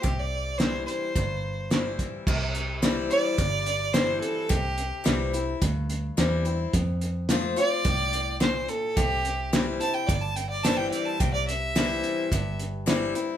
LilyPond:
<<
  \new Staff \with { instrumentName = "Fiddle" } { \time 4/4 \key c \major \tempo 4 = 108 \tuplet 3/2 { g'8 d''4 } c''8 c''2 r8 | r4. d''4. c''8 a'8 | g'4 r2. | r4. d''4. c''8 a'8 |
g'4 r8 a''16 g''16 d''16 a''16 g''16 d''16 a''16 g''16 d''16 a''16 | g''16 d''16 e''2 r4. | }
  \new Staff \with { instrumentName = "Steel-string acoustic guitar" } { \clef bass \time 4/4 \key c \major << { r4 <e g c' e'>4 r4 <e g c' e'>4 | r4 <e g c' e'>4 r4 <e g c' e'>4 | r4 <e g c' e'>8 <c' e'>8 r4 <e g c' e'>8 <c' e'>8 | r4 <f a c' f'>8 <c' f'>8 r2 |
r4 <e g c' e'>8 <c' e'>8 r4 <e g c' e'>4 | r4 <e g c' e'>4 r4 <e g c' e'>8 <c' e'>8 | } \\ { c2 g,2 | c2 g,2 | c2 g,2 | f,2 a,4 bes,4 |
c2 g,2 | c2 g,2 | } >> }
  \new Staff \with { instrumentName = "Fingered electric bass" } { \clef bass \time 4/4 \key c \major c,2 g,,2 | c,2 g,,2 | c,4 c,4 d,4 e,4 | f,2 c,2 |
c,2 g,,2 | c,2 g,,2 | }
  \new DrumStaff \with { instrumentName = "Drums" } \drummode { \time 4/4 <hh bd>4 <hh sn>8 hh8 <hh bd>4 <hh sn>8 <hh bd>8 | <cymc bd>8 hh8 <hh sn>8 hh8 <hh bd>8 hh8 <hh sn>8 hh8 | <hh bd>8 hh8 <hh sn>8 hh8 <hh bd>8 hh8 <hh sn>8 hh8 | <hh bd>8 hh8 <hh sn>8 hh8 <hh bd>8 hh8 <hh sn>8 hh8 |
<hh bd>8 hh8 <hh sn>8 hh8 <hh bd>8 hh8 <hh sn>8 hh8 | <hh bd>8 hh8 <hh sn>8 hh8 <hh bd>8 hh8 <hh sn>8 hh8 | }
>>